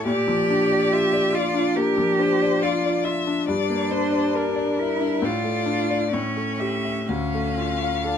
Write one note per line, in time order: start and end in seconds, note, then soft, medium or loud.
0.05 1.71 A#2 medium
0.05 1.35 G4 medium
0.05 0.94 D5 medium
0.28 0.62 F3 soft
0.50 0.84 D4 soft
0.72 1.05 D5 soft
0.92 1.26 F4 soft
0.92 1.36 E5 medium
1.13 1.47 D5 soft
1.33 1.67 F4 soft
1.33 1.77 F4 medium
1.33 1.78 D5 medium
1.54 1.89 D4 soft
1.75 2.10 A#3 soft
1.75 2.64 G4 medium
1.75 2.20 A#4 soft
1.98 2.32 F3 soft
2.19 2.54 D4 soft
2.19 2.64 C5 medium
2.42 2.76 D5 soft
2.62 3.05 F4 medium
2.62 2.98 F4 soft
2.62 3.05 D5 soft
2.86 3.19 D5 soft
3.04 3.40 F4 soft
3.04 3.48 E5 soft
3.27 3.48 D4 soft
3.47 5.19 G2 soft
3.47 4.80 D4 medium
3.47 3.92 D5 soft
3.69 4.04 A#3 soft
3.91 4.26 D4 soft
3.91 4.36 C5 soft
4.12 4.48 D5 soft
4.35 5.25 A#4 soft
4.35 4.70 A#4 soft
4.56 4.92 D5 soft
4.79 5.26 E4 medium
4.79 5.14 A#4 soft
5.00 5.23 D4 soft
5.22 6.09 A2 soft
5.22 6.12 F4 medium
5.22 6.15 D5 soft
5.44 5.80 A3 soft
5.66 6.03 D4 soft
5.90 6.13 D5 soft
6.13 7.05 A2 soft
6.13 7.05 C#4 medium
6.13 6.60 C#5 soft
6.36 6.74 A3 soft
6.59 6.98 G4 soft
6.59 7.09 E5 soft
6.84 7.08 E5 soft
7.08 8.18 D2 soft
7.08 8.08 C#4 medium
7.08 8.18 F5 soft
7.34 7.72 A3 soft
7.57 7.96 F4 soft
7.82 8.18 F5 soft
8.04 8.18 D4 soft
8.04 8.18 A4 soft